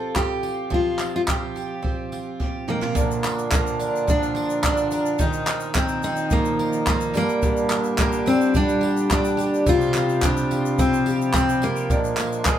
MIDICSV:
0, 0, Header, 1, 5, 480
1, 0, Start_track
1, 0, Key_signature, -2, "major"
1, 0, Tempo, 559180
1, 615, Time_signature, 4, 2, 24, 8
1, 10806, End_track
2, 0, Start_track
2, 0, Title_t, "Twelve-string acoustic guitar"
2, 0, Program_c, 0, 25
2, 0, Note_on_c, 0, 53, 81
2, 0, Note_on_c, 0, 60, 68
2, 0, Note_on_c, 0, 65, 61
2, 0, Note_on_c, 0, 67, 59
2, 116, Note_off_c, 0, 67, 0
2, 126, Note_on_c, 0, 67, 60
2, 365, Note_off_c, 0, 65, 0
2, 368, Note_on_c, 0, 65, 56
2, 600, Note_off_c, 0, 53, 0
2, 603, Note_on_c, 0, 53, 80
2, 841, Note_off_c, 0, 60, 0
2, 851, Note_on_c, 0, 60, 53
2, 1094, Note_off_c, 0, 65, 0
2, 1097, Note_on_c, 0, 65, 59
2, 1326, Note_off_c, 0, 67, 0
2, 1337, Note_on_c, 0, 67, 60
2, 1556, Note_off_c, 0, 60, 0
2, 1566, Note_on_c, 0, 60, 65
2, 1821, Note_off_c, 0, 65, 0
2, 1824, Note_on_c, 0, 65, 55
2, 2048, Note_off_c, 0, 67, 0
2, 2058, Note_on_c, 0, 67, 65
2, 2295, Note_off_c, 0, 65, 0
2, 2298, Note_on_c, 0, 63, 53
2, 2414, Note_off_c, 0, 63, 0
2, 2414, Note_on_c, 0, 65, 49
2, 2532, Note_on_c, 0, 46, 93
2, 2581, Note_off_c, 0, 60, 0
2, 2584, Note_off_c, 0, 65, 0
2, 2586, Note_off_c, 0, 67, 0
2, 2789, Note_on_c, 0, 58, 65
2, 3015, Note_on_c, 0, 70, 67
2, 3258, Note_on_c, 0, 62, 60
2, 3494, Note_off_c, 0, 53, 0
2, 3498, Note_on_c, 0, 53, 76
2, 3728, Note_off_c, 0, 70, 0
2, 3731, Note_on_c, 0, 70, 70
2, 3962, Note_off_c, 0, 62, 0
2, 3972, Note_on_c, 0, 62, 67
2, 4218, Note_off_c, 0, 70, 0
2, 4221, Note_on_c, 0, 70, 68
2, 4453, Note_on_c, 0, 51, 95
2, 4456, Note_off_c, 0, 46, 0
2, 4503, Note_off_c, 0, 62, 0
2, 4506, Note_off_c, 0, 53, 0
2, 4694, Note_off_c, 0, 58, 0
2, 4698, Note_on_c, 0, 58, 72
2, 4933, Note_off_c, 0, 70, 0
2, 4937, Note_on_c, 0, 70, 67
2, 5184, Note_on_c, 0, 63, 64
2, 5418, Note_on_c, 0, 53, 78
2, 5655, Note_off_c, 0, 70, 0
2, 5659, Note_on_c, 0, 70, 70
2, 5884, Note_off_c, 0, 63, 0
2, 5894, Note_on_c, 0, 63, 69
2, 6126, Note_on_c, 0, 43, 82
2, 6183, Note_off_c, 0, 51, 0
2, 6184, Note_off_c, 0, 63, 0
2, 6186, Note_off_c, 0, 53, 0
2, 6366, Note_off_c, 0, 43, 0
2, 6376, Note_on_c, 0, 43, 89
2, 6607, Note_off_c, 0, 58, 0
2, 6610, Note_on_c, 0, 58, 68
2, 6856, Note_off_c, 0, 70, 0
2, 6859, Note_on_c, 0, 67, 66
2, 7090, Note_on_c, 0, 62, 73
2, 7338, Note_on_c, 0, 55, 82
2, 7558, Note_off_c, 0, 67, 0
2, 7562, Note_on_c, 0, 67, 74
2, 7805, Note_off_c, 0, 62, 0
2, 7816, Note_on_c, 0, 62, 62
2, 8040, Note_off_c, 0, 67, 0
2, 8044, Note_on_c, 0, 67, 72
2, 8296, Note_off_c, 0, 43, 0
2, 8296, Note_on_c, 0, 48, 99
2, 8341, Note_off_c, 0, 58, 0
2, 8344, Note_off_c, 0, 62, 0
2, 8528, Note_on_c, 0, 60, 72
2, 8769, Note_off_c, 0, 67, 0
2, 8772, Note_on_c, 0, 67, 70
2, 9022, Note_on_c, 0, 65, 70
2, 9047, Note_off_c, 0, 55, 0
2, 9262, Note_on_c, 0, 53, 76
2, 9486, Note_off_c, 0, 67, 0
2, 9496, Note_on_c, 0, 67, 70
2, 9742, Note_off_c, 0, 65, 0
2, 9745, Note_on_c, 0, 65, 60
2, 9973, Note_off_c, 0, 67, 0
2, 9983, Note_on_c, 0, 67, 74
2, 10216, Note_off_c, 0, 48, 0
2, 10220, Note_on_c, 0, 46, 89
2, 10260, Note_off_c, 0, 60, 0
2, 10268, Note_off_c, 0, 67, 0
2, 10466, Note_on_c, 0, 58, 62
2, 10697, Note_on_c, 0, 68, 74
2, 10806, Note_off_c, 0, 46, 0
2, 10806, Note_off_c, 0, 53, 0
2, 10806, Note_off_c, 0, 58, 0
2, 10806, Note_off_c, 0, 65, 0
2, 10806, Note_off_c, 0, 68, 0
2, 10806, End_track
3, 0, Start_track
3, 0, Title_t, "Steel-string acoustic guitar"
3, 0, Program_c, 1, 25
3, 0, Note_on_c, 1, 69, 94
3, 136, Note_off_c, 1, 69, 0
3, 140, Note_on_c, 1, 67, 85
3, 632, Note_off_c, 1, 67, 0
3, 636, Note_on_c, 1, 65, 83
3, 961, Note_off_c, 1, 65, 0
3, 994, Note_on_c, 1, 65, 85
3, 1037, Note_off_c, 1, 65, 0
3, 1111, Note_on_c, 1, 67, 74
3, 2030, Note_off_c, 1, 67, 0
3, 2317, Note_on_c, 1, 58, 78
3, 2993, Note_off_c, 1, 58, 0
3, 3035, Note_on_c, 1, 58, 93
3, 3473, Note_off_c, 1, 58, 0
3, 3517, Note_on_c, 1, 62, 99
3, 3995, Note_off_c, 1, 62, 0
3, 4005, Note_on_c, 1, 62, 104
3, 4467, Note_off_c, 1, 62, 0
3, 4471, Note_on_c, 1, 63, 106
3, 4911, Note_off_c, 1, 63, 0
3, 4948, Note_on_c, 1, 60, 97
3, 5174, Note_off_c, 1, 60, 0
3, 5184, Note_on_c, 1, 60, 94
3, 5428, Note_off_c, 1, 60, 0
3, 5429, Note_on_c, 1, 58, 104
3, 5909, Note_off_c, 1, 58, 0
3, 5920, Note_on_c, 1, 58, 92
3, 6146, Note_off_c, 1, 58, 0
3, 6156, Note_on_c, 1, 58, 97
3, 6858, Note_off_c, 1, 58, 0
3, 6868, Note_on_c, 1, 58, 98
3, 7101, Note_on_c, 1, 60, 105
3, 7110, Note_off_c, 1, 58, 0
3, 7346, Note_off_c, 1, 60, 0
3, 7351, Note_on_c, 1, 62, 106
3, 7791, Note_off_c, 1, 62, 0
3, 7832, Note_on_c, 1, 62, 111
3, 8317, Note_on_c, 1, 65, 114
3, 8318, Note_off_c, 1, 62, 0
3, 8797, Note_on_c, 1, 62, 109
3, 8801, Note_off_c, 1, 65, 0
3, 9260, Note_off_c, 1, 62, 0
3, 9264, Note_on_c, 1, 60, 99
3, 9706, Note_off_c, 1, 60, 0
3, 9737, Note_on_c, 1, 60, 109
3, 9984, Note_off_c, 1, 60, 0
3, 9989, Note_on_c, 1, 58, 92
3, 10699, Note_off_c, 1, 58, 0
3, 10709, Note_on_c, 1, 58, 96
3, 10806, Note_off_c, 1, 58, 0
3, 10806, End_track
4, 0, Start_track
4, 0, Title_t, "Harmonium"
4, 0, Program_c, 2, 20
4, 2543, Note_on_c, 2, 53, 78
4, 2545, Note_on_c, 2, 46, 84
4, 2545, Note_on_c, 2, 50, 76
4, 2545, Note_on_c, 2, 65, 94
4, 2549, Note_on_c, 2, 62, 78
4, 4443, Note_off_c, 2, 50, 0
4, 4445, Note_off_c, 2, 62, 0
4, 4468, Note_on_c, 2, 63, 76
4, 4471, Note_on_c, 2, 51, 82
4, 6106, Note_off_c, 2, 53, 0
4, 6107, Note_off_c, 2, 65, 0
4, 6126, Note_off_c, 2, 63, 0
4, 6127, Note_off_c, 2, 51, 0
4, 6139, Note_on_c, 2, 50, 77
4, 6139, Note_on_c, 2, 55, 71
4, 6142, Note_on_c, 2, 67, 90
4, 6143, Note_on_c, 2, 62, 72
4, 8267, Note_off_c, 2, 46, 0
4, 8276, Note_off_c, 2, 50, 0
4, 8278, Note_off_c, 2, 62, 0
4, 8278, Note_off_c, 2, 67, 0
4, 8312, Note_on_c, 2, 48, 86
4, 8315, Note_on_c, 2, 67, 97
4, 8318, Note_on_c, 2, 65, 75
4, 8319, Note_on_c, 2, 53, 80
4, 10182, Note_off_c, 2, 55, 0
4, 10205, Note_off_c, 2, 48, 0
4, 10206, Note_off_c, 2, 67, 0
4, 10231, Note_on_c, 2, 56, 74
4, 10232, Note_on_c, 2, 62, 80
4, 10237, Note_on_c, 2, 46, 85
4, 10806, Note_off_c, 2, 46, 0
4, 10806, Note_off_c, 2, 53, 0
4, 10806, Note_off_c, 2, 56, 0
4, 10806, Note_off_c, 2, 62, 0
4, 10806, Note_off_c, 2, 65, 0
4, 10806, End_track
5, 0, Start_track
5, 0, Title_t, "Drums"
5, 135, Note_on_c, 9, 39, 101
5, 136, Note_on_c, 9, 36, 97
5, 221, Note_off_c, 9, 39, 0
5, 222, Note_off_c, 9, 36, 0
5, 370, Note_on_c, 9, 54, 59
5, 456, Note_off_c, 9, 54, 0
5, 618, Note_on_c, 9, 36, 103
5, 704, Note_off_c, 9, 36, 0
5, 849, Note_on_c, 9, 39, 83
5, 850, Note_on_c, 9, 54, 63
5, 935, Note_off_c, 9, 39, 0
5, 936, Note_off_c, 9, 54, 0
5, 1098, Note_on_c, 9, 39, 118
5, 1100, Note_on_c, 9, 36, 106
5, 1183, Note_off_c, 9, 39, 0
5, 1185, Note_off_c, 9, 36, 0
5, 1349, Note_on_c, 9, 54, 54
5, 1435, Note_off_c, 9, 54, 0
5, 1585, Note_on_c, 9, 36, 103
5, 1670, Note_off_c, 9, 36, 0
5, 1820, Note_on_c, 9, 54, 56
5, 1906, Note_off_c, 9, 54, 0
5, 2062, Note_on_c, 9, 36, 93
5, 2063, Note_on_c, 9, 38, 50
5, 2148, Note_off_c, 9, 36, 0
5, 2149, Note_off_c, 9, 38, 0
5, 2302, Note_on_c, 9, 45, 90
5, 2388, Note_off_c, 9, 45, 0
5, 2421, Note_on_c, 9, 43, 83
5, 2507, Note_off_c, 9, 43, 0
5, 2543, Note_on_c, 9, 36, 121
5, 2543, Note_on_c, 9, 82, 75
5, 2629, Note_off_c, 9, 36, 0
5, 2629, Note_off_c, 9, 82, 0
5, 2670, Note_on_c, 9, 82, 56
5, 2755, Note_off_c, 9, 82, 0
5, 2779, Note_on_c, 9, 82, 57
5, 2782, Note_on_c, 9, 39, 102
5, 2783, Note_on_c, 9, 54, 69
5, 2864, Note_off_c, 9, 82, 0
5, 2868, Note_off_c, 9, 39, 0
5, 2869, Note_off_c, 9, 54, 0
5, 2906, Note_on_c, 9, 82, 52
5, 2992, Note_off_c, 9, 82, 0
5, 3019, Note_on_c, 9, 39, 127
5, 3022, Note_on_c, 9, 36, 127
5, 3027, Note_on_c, 9, 82, 69
5, 3105, Note_off_c, 9, 39, 0
5, 3108, Note_off_c, 9, 36, 0
5, 3113, Note_off_c, 9, 82, 0
5, 3148, Note_on_c, 9, 82, 52
5, 3234, Note_off_c, 9, 82, 0
5, 3262, Note_on_c, 9, 54, 65
5, 3267, Note_on_c, 9, 82, 51
5, 3348, Note_off_c, 9, 54, 0
5, 3352, Note_off_c, 9, 82, 0
5, 3395, Note_on_c, 9, 82, 52
5, 3481, Note_off_c, 9, 82, 0
5, 3503, Note_on_c, 9, 82, 69
5, 3506, Note_on_c, 9, 36, 127
5, 3589, Note_off_c, 9, 82, 0
5, 3591, Note_off_c, 9, 36, 0
5, 3630, Note_on_c, 9, 82, 57
5, 3715, Note_off_c, 9, 82, 0
5, 3744, Note_on_c, 9, 54, 65
5, 3829, Note_off_c, 9, 54, 0
5, 3859, Note_on_c, 9, 82, 55
5, 3945, Note_off_c, 9, 82, 0
5, 3976, Note_on_c, 9, 82, 74
5, 3981, Note_on_c, 9, 39, 113
5, 3983, Note_on_c, 9, 36, 106
5, 4062, Note_off_c, 9, 82, 0
5, 4067, Note_off_c, 9, 39, 0
5, 4068, Note_off_c, 9, 36, 0
5, 4093, Note_on_c, 9, 82, 55
5, 4179, Note_off_c, 9, 82, 0
5, 4214, Note_on_c, 9, 82, 51
5, 4223, Note_on_c, 9, 54, 72
5, 4300, Note_off_c, 9, 82, 0
5, 4309, Note_off_c, 9, 54, 0
5, 4339, Note_on_c, 9, 82, 55
5, 4425, Note_off_c, 9, 82, 0
5, 4451, Note_on_c, 9, 82, 74
5, 4461, Note_on_c, 9, 36, 116
5, 4537, Note_off_c, 9, 82, 0
5, 4546, Note_off_c, 9, 36, 0
5, 4573, Note_on_c, 9, 82, 55
5, 4659, Note_off_c, 9, 82, 0
5, 4688, Note_on_c, 9, 82, 58
5, 4697, Note_on_c, 9, 39, 101
5, 4698, Note_on_c, 9, 54, 69
5, 4774, Note_off_c, 9, 82, 0
5, 4783, Note_off_c, 9, 39, 0
5, 4784, Note_off_c, 9, 54, 0
5, 4807, Note_on_c, 9, 82, 48
5, 4893, Note_off_c, 9, 82, 0
5, 4926, Note_on_c, 9, 82, 73
5, 4936, Note_on_c, 9, 39, 122
5, 4938, Note_on_c, 9, 36, 120
5, 5012, Note_off_c, 9, 82, 0
5, 5022, Note_off_c, 9, 39, 0
5, 5023, Note_off_c, 9, 36, 0
5, 5049, Note_on_c, 9, 82, 60
5, 5135, Note_off_c, 9, 82, 0
5, 5170, Note_on_c, 9, 82, 46
5, 5179, Note_on_c, 9, 54, 63
5, 5256, Note_off_c, 9, 82, 0
5, 5265, Note_off_c, 9, 54, 0
5, 5289, Note_on_c, 9, 82, 52
5, 5375, Note_off_c, 9, 82, 0
5, 5409, Note_on_c, 9, 82, 65
5, 5417, Note_on_c, 9, 36, 120
5, 5495, Note_off_c, 9, 82, 0
5, 5503, Note_off_c, 9, 36, 0
5, 5537, Note_on_c, 9, 82, 54
5, 5622, Note_off_c, 9, 82, 0
5, 5661, Note_on_c, 9, 54, 65
5, 5746, Note_off_c, 9, 54, 0
5, 5773, Note_on_c, 9, 82, 59
5, 5859, Note_off_c, 9, 82, 0
5, 5893, Note_on_c, 9, 82, 76
5, 5895, Note_on_c, 9, 39, 119
5, 5897, Note_on_c, 9, 36, 104
5, 5979, Note_off_c, 9, 82, 0
5, 5981, Note_off_c, 9, 39, 0
5, 5983, Note_off_c, 9, 36, 0
5, 6012, Note_on_c, 9, 82, 57
5, 6098, Note_off_c, 9, 82, 0
5, 6135, Note_on_c, 9, 82, 48
5, 6139, Note_on_c, 9, 54, 70
5, 6221, Note_off_c, 9, 82, 0
5, 6225, Note_off_c, 9, 54, 0
5, 6259, Note_on_c, 9, 82, 52
5, 6344, Note_off_c, 9, 82, 0
5, 6370, Note_on_c, 9, 82, 77
5, 6375, Note_on_c, 9, 36, 113
5, 6456, Note_off_c, 9, 82, 0
5, 6461, Note_off_c, 9, 36, 0
5, 6495, Note_on_c, 9, 82, 54
5, 6581, Note_off_c, 9, 82, 0
5, 6605, Note_on_c, 9, 82, 62
5, 6610, Note_on_c, 9, 39, 102
5, 6610, Note_on_c, 9, 54, 70
5, 6691, Note_off_c, 9, 82, 0
5, 6695, Note_off_c, 9, 39, 0
5, 6696, Note_off_c, 9, 54, 0
5, 6728, Note_on_c, 9, 82, 51
5, 6814, Note_off_c, 9, 82, 0
5, 6849, Note_on_c, 9, 82, 69
5, 6853, Note_on_c, 9, 39, 127
5, 6855, Note_on_c, 9, 36, 123
5, 6934, Note_off_c, 9, 82, 0
5, 6939, Note_off_c, 9, 39, 0
5, 6941, Note_off_c, 9, 36, 0
5, 6972, Note_on_c, 9, 82, 59
5, 7057, Note_off_c, 9, 82, 0
5, 7094, Note_on_c, 9, 82, 47
5, 7103, Note_on_c, 9, 54, 67
5, 7180, Note_off_c, 9, 82, 0
5, 7188, Note_off_c, 9, 54, 0
5, 7220, Note_on_c, 9, 82, 52
5, 7306, Note_off_c, 9, 82, 0
5, 7332, Note_on_c, 9, 82, 70
5, 7337, Note_on_c, 9, 36, 124
5, 7418, Note_off_c, 9, 82, 0
5, 7423, Note_off_c, 9, 36, 0
5, 7458, Note_on_c, 9, 82, 56
5, 7544, Note_off_c, 9, 82, 0
5, 7576, Note_on_c, 9, 54, 69
5, 7662, Note_off_c, 9, 54, 0
5, 7697, Note_on_c, 9, 82, 58
5, 7783, Note_off_c, 9, 82, 0
5, 7812, Note_on_c, 9, 82, 79
5, 7818, Note_on_c, 9, 36, 108
5, 7818, Note_on_c, 9, 39, 110
5, 7898, Note_off_c, 9, 82, 0
5, 7904, Note_off_c, 9, 36, 0
5, 7904, Note_off_c, 9, 39, 0
5, 7936, Note_on_c, 9, 82, 59
5, 8022, Note_off_c, 9, 82, 0
5, 8055, Note_on_c, 9, 54, 74
5, 8064, Note_on_c, 9, 82, 52
5, 8141, Note_off_c, 9, 54, 0
5, 8150, Note_off_c, 9, 82, 0
5, 8189, Note_on_c, 9, 82, 53
5, 8274, Note_off_c, 9, 82, 0
5, 8297, Note_on_c, 9, 36, 126
5, 8298, Note_on_c, 9, 82, 72
5, 8383, Note_off_c, 9, 36, 0
5, 8384, Note_off_c, 9, 82, 0
5, 8420, Note_on_c, 9, 82, 51
5, 8506, Note_off_c, 9, 82, 0
5, 8534, Note_on_c, 9, 39, 96
5, 8534, Note_on_c, 9, 54, 67
5, 8535, Note_on_c, 9, 82, 59
5, 8620, Note_off_c, 9, 39, 0
5, 8620, Note_off_c, 9, 54, 0
5, 8620, Note_off_c, 9, 82, 0
5, 8661, Note_on_c, 9, 82, 54
5, 8747, Note_off_c, 9, 82, 0
5, 8777, Note_on_c, 9, 36, 119
5, 8777, Note_on_c, 9, 39, 127
5, 8780, Note_on_c, 9, 82, 73
5, 8862, Note_off_c, 9, 39, 0
5, 8863, Note_off_c, 9, 36, 0
5, 8866, Note_off_c, 9, 82, 0
5, 8900, Note_on_c, 9, 82, 60
5, 8985, Note_off_c, 9, 82, 0
5, 9020, Note_on_c, 9, 54, 64
5, 9022, Note_on_c, 9, 82, 51
5, 9106, Note_off_c, 9, 54, 0
5, 9108, Note_off_c, 9, 82, 0
5, 9144, Note_on_c, 9, 82, 54
5, 9230, Note_off_c, 9, 82, 0
5, 9258, Note_on_c, 9, 82, 71
5, 9260, Note_on_c, 9, 36, 118
5, 9344, Note_off_c, 9, 82, 0
5, 9346, Note_off_c, 9, 36, 0
5, 9384, Note_on_c, 9, 82, 56
5, 9470, Note_off_c, 9, 82, 0
5, 9493, Note_on_c, 9, 54, 69
5, 9506, Note_on_c, 9, 82, 49
5, 9579, Note_off_c, 9, 54, 0
5, 9592, Note_off_c, 9, 82, 0
5, 9625, Note_on_c, 9, 82, 57
5, 9711, Note_off_c, 9, 82, 0
5, 9730, Note_on_c, 9, 39, 110
5, 9735, Note_on_c, 9, 36, 113
5, 9749, Note_on_c, 9, 82, 80
5, 9816, Note_off_c, 9, 39, 0
5, 9821, Note_off_c, 9, 36, 0
5, 9835, Note_off_c, 9, 82, 0
5, 9864, Note_on_c, 9, 82, 56
5, 9950, Note_off_c, 9, 82, 0
5, 9971, Note_on_c, 9, 54, 72
5, 9982, Note_on_c, 9, 82, 51
5, 10057, Note_off_c, 9, 54, 0
5, 10068, Note_off_c, 9, 82, 0
5, 10097, Note_on_c, 9, 82, 52
5, 10183, Note_off_c, 9, 82, 0
5, 10215, Note_on_c, 9, 36, 123
5, 10218, Note_on_c, 9, 82, 71
5, 10300, Note_off_c, 9, 36, 0
5, 10304, Note_off_c, 9, 82, 0
5, 10337, Note_on_c, 9, 82, 52
5, 10423, Note_off_c, 9, 82, 0
5, 10447, Note_on_c, 9, 39, 100
5, 10448, Note_on_c, 9, 54, 73
5, 10456, Note_on_c, 9, 82, 59
5, 10533, Note_off_c, 9, 39, 0
5, 10534, Note_off_c, 9, 54, 0
5, 10542, Note_off_c, 9, 82, 0
5, 10577, Note_on_c, 9, 82, 50
5, 10663, Note_off_c, 9, 82, 0
5, 10689, Note_on_c, 9, 39, 121
5, 10694, Note_on_c, 9, 36, 114
5, 10700, Note_on_c, 9, 82, 72
5, 10775, Note_off_c, 9, 39, 0
5, 10780, Note_off_c, 9, 36, 0
5, 10785, Note_off_c, 9, 82, 0
5, 10806, End_track
0, 0, End_of_file